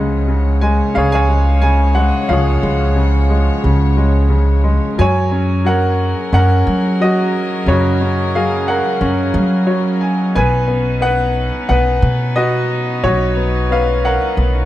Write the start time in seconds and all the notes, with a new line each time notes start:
Already playing: C#2 C#3 F3 G#3 C#5 D#5 F5 F#5 G#5
0.28 C#3
0.61 G#3 G#5
0.94 C#2 C#3 G#4 C#5 F5
1.12 C#5 F5 G#5
1.29 G#3
1.62 C#3 G#5
1.95 G#3 F#5
2.29 C#2 F3 G#4 C#5 F5
2.62 C#2 G#3
2.96 C#3
3.30 G#3
3.63 C#2 C#3
3.97 G#3
4.29 C#3
4.64 G#3
4.98 F#2 F#3 C#4 G#4 A#4 C#5 G#5
5.32 C#4
5.65 F#3 A#4 F#5
6.33 F#2 C#4 A#4 F#5
6.67 F#3
7.00 F#3 F#4 D#5
7.66 F#2 C#3 F#4 C#5
8.01 C#4
8.35 F#3 G#4 F5
8.68 A#4 F#5
9.01 F#2 C#4
9.34 F#3
9.67 F#3 C#5
10.01 G#5
10.35 B1 B3 D#4 B4 G#5
10.68 B3
11.01 B3 F#5
11.05 B4
11.69 B1 B3 B4 F#5
12.02 B2
12.36 B3 F#4 D#5
13.03 B1 F#3 F#4 C#5
13.37 B3
13.70 B3 B4 F5
14.05 A#4 F#5
14.37 B1 B3